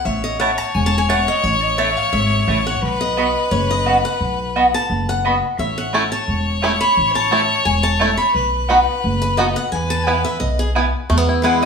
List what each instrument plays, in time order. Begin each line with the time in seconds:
0.05 upright bass A1, fiddle C#5, steel-string acoustic guitar E5
0.24 steel-string acoustic guitar D#5
0.40 mandolin A3 E4 C#5 A5, steel-string acoustic guitar F#5
0.58 steel-string acoustic guitar A5
0.74 upright bass E1, steel-string acoustic guitar G#5
0.86 steel-string acoustic guitar A5
0.98 steel-string acoustic guitar G#5
1.08 mandolin A3 E4 C#5 A5, steel-string acoustic guitar F#5
1.28 steel-string acoustic guitar D#5
1.44 upright bass A1, steel-string acoustic guitar C#5
1.63 steel-string acoustic guitar D#5
1.78 mandolin A3 E4 C#5 A5, steel-string acoustic guitar E5
1.97 steel-string acoustic guitar F5
2.13 upright bass G#1, steel-string acoustic guitar E5
2.47 upright bass A1, mandolin A3 E4 C#5 A5
2.67 steel-string acoustic guitar F#5
2.82 upright bass B1, fiddle B4
3.01 steel-string acoustic guitar D#5
3.17 mandolin B3 F#4 D#5 B5
3.51 upright bass F#1, steel-string acoustic guitar C#5
3.71 steel-string acoustic guitar D#5
3.86 mandolin B3 F#4 D#5 B5
4.05 steel-string acoustic guitar F#5
4.21 upright bass B1
4.56 mandolin B3 F#4 D#5 B5
4.74 steel-string acoustic guitar A5
4.90 upright bass F#1
5.09 steel-string acoustic guitar F#5
5.25 mandolin B3 F#4 D#5 B5
5.58 upright bass A1, fiddle C#5, steel-string acoustic guitar E5
5.78 steel-string acoustic guitar F#5
5.93 mandolin A3 E4 C#5 A5, five-string banjo A3 C#4 E4
6.12 steel-string acoustic guitar A5
6.28 upright bass E1
6.62 mandolin A3 E4 C#5 A5, five-string banjo A3 C#4 E4
6.81 steel-string acoustic guitar B5
6.97 upright bass A1
7.15 steel-string acoustic guitar A5
7.31 mandolin A3 E4 C#5 A5, five-string banjo A3 C#4 E4
7.65 upright bass E1, steel-string acoustic guitar G#5
7.83 steel-string acoustic guitar A5
7.99 mandolin A3 E4 C#5 A5, five-string banjo A3 C#4 E4
8.17 steel-string acoustic guitar B5
8.34 upright bass B1, fiddle B4
8.68 mandolin B3 F#4 D#5 B5, five-string banjo B3 D#4 F#4
9.04 upright bass F#1
9.22 steel-string acoustic guitar B4
9.37 mandolin B3 F#4 D#5 B5, five-string banjo B3 D#4 F#4, steel-string acoustic guitar D#5
9.56 steel-string acoustic guitar F#5
9.72 upright bass E2, fiddle B4, steel-string acoustic guitar G#5
9.90 steel-string acoustic guitar A5
10.06 mandolin B3 E4 B4 G#5, five-string banjo B3 E4, steel-string acoustic guitar F#5
10.25 steel-string acoustic guitar E5
10.40 upright bass B1, steel-string acoustic guitar D#5
10.59 steel-string acoustic guitar G#4
10.75 mandolin B3 E4 B4 G#5, five-string banjo B3 E4
11.10 steel-string acoustic guitar E2, upright bass E2, five-string banjo A3
11.17 five-string banjo B3
11.29 five-string banjo E4
11.42 steel-string acoustic guitar E3 G#3 B3 E4, mandolin B3 E4 B4 F#5 G#5, five-string banjo E4
11.62 steel-string acoustic guitar E4